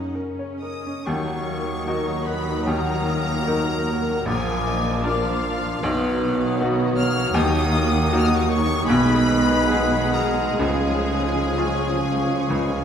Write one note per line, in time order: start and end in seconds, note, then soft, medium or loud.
0.00 0.88 F#2 medium
0.00 1.09 C#3 soft
0.00 0.15 F#3 soft
0.00 0.59 C#4 soft
0.00 0.86 C#4 soft
0.00 0.14 D#4 soft
0.00 0.15 F#4 soft
0.00 0.15 A#4 soft
0.00 0.39 C#5 soft
0.00 0.14 F#5 soft
0.15 1.07 C#4 soft
0.15 0.53 A#4 soft
0.39 0.77 C#5 soft
0.60 0.98 A#4 soft
0.60 1.03 D#5 medium
0.60 1.03 D#6 medium
0.86 1.07 C#4 soft
1.05 4.24 D#2 medium
1.05 2.64 D#2 medium
1.05 5.80 A#2 medium
1.05 2.64 D#3 medium
1.05 4.25 D#3 medium
1.05 4.31 F#3 medium
1.05 4.25 F#3 medium
1.05 5.80 A#3 medium
1.05 4.24 D#4 medium
1.05 5.80 A#4 medium
1.05 2.29 C#5 medium
1.05 1.45 F#5 medium
1.05 2.28 C#6 medium
1.05 4.01 D#6 medium
1.47 1.87 F5 medium
1.87 2.64 D#4 medium
1.87 2.64 F#4 medium
1.87 2.64 A#4 medium
1.87 2.28 D#5 medium
2.25 2.68 B4 medium
2.25 2.69 D#5 medium
2.25 2.67 B5 medium
2.66 4.24 D#2 medium
2.66 4.23 D#3 medium
2.66 4.25 A#4 medium
2.66 3.11 F#5 medium
2.66 4.28 A#5 loud
3.10 3.48 F5 medium
3.47 4.23 D#4 medium
3.47 4.24 F#4 soft
3.47 4.24 A#4 medium
3.47 3.88 D#5 medium
3.88 4.30 F#5 medium
4.26 5.78 A#1 medium
4.26 5.81 A#1 medium
4.26 5.79 A#2 medium
4.26 5.80 A#2 medium
4.26 5.79 F3 medium
4.26 5.83 F3 medium
4.26 5.84 F3 medium
4.26 5.80 D4 medium
4.26 5.81 D4 medium
4.26 5.07 G#4 medium
4.26 4.69 F5 medium
4.26 5.03 G#5 medium
4.26 5.80 D6 medium
4.67 5.07 D#5 medium
5.03 5.79 D4 medium
5.03 5.79 F4 medium
5.03 6.61 F4 medium
5.03 5.79 A#4 medium
5.03 5.42 D5 medium
5.03 6.57 F5 medium
5.43 5.82 D5 medium
5.82 7.31 B1 medium
5.82 7.31 B1 loud
5.82 7.32 B2 medium
5.82 7.31 B2 medium
5.82 10.57 D#3 medium
5.82 11.51 D#3 medium
5.82 8.89 F#3 medium
5.82 8.60 F#3 medium
5.82 7.17 B3 medium
5.82 7.31 B3 medium
5.82 10.57 D#4 medium
5.82 10.61 D#4 medium
5.82 8.85 F#4 medium
5.82 6.59 B4 medium
5.82 11.56 D#6 medium
6.57 7.31 B3 medium
6.57 7.31 D#4 medium
6.57 6.96 D#5 medium
6.62 7.32 F#4 medium
6.96 7.34 C#5 medium
6.96 7.36 F5 loud
6.96 7.32 F6 loud
7.33 8.86 D#2 loud
7.33 8.85 D#2 loud
7.33 8.86 D#2 medium
7.33 8.85 D#3 medium
7.33 8.86 A#3 medium
7.33 7.74 D#5 medium
7.33 8.51 D#5 loud
7.33 8.18 D#6 loud
7.72 8.11 F5 medium
8.09 8.86 A#3 medium
8.09 8.86 D#4 medium
8.09 8.86 F#4 medium
8.09 8.63 F#5 loud
8.19 8.27 F6 loud
8.26 8.34 D#6 loud
8.35 8.43 C#6 medium
8.41 8.50 D#6 medium
8.49 8.90 C#5 loud
8.49 8.89 C#6 loud
8.86 10.57 B1 medium
8.86 10.57 B1 loud
8.86 10.57 B2 loud
8.86 10.57 B2 medium
8.86 10.56 G#3 medium
8.86 10.61 B3 medium
8.86 12.84 G#4 medium
8.86 10.15 B4 loud
8.86 9.25 G#5 loud
8.86 10.11 B5 loud
8.90 12.84 G#3 medium
8.90 12.84 G#3 loud
9.26 9.68 D#5 medium
9.67 10.59 F#5 loud
9.71 10.57 G#3 medium
9.71 10.57 D#4 medium
9.71 10.57 G#4 medium
10.14 10.59 A#4 medium
10.14 10.61 A#5 medium
10.58 12.44 C#2 medium
10.58 12.84 C#2 medium
10.58 12.44 C#3 medium
10.58 12.84 C#3 medium
10.58 12.84 F3 medium
10.58 12.84 C#4 medium
10.58 12.84 F4 medium
10.58 12.84 G#4 medium
10.58 12.84 F5 medium
10.58 12.84 G#5 medium
11.55 12.84 C#3 medium
11.55 12.46 G#3 medium
11.55 12.46 F4 medium
11.55 12.46 G#4 medium
11.55 12.84 C#6 medium
12.49 12.84 C#2 medium
12.49 12.84 C#3 medium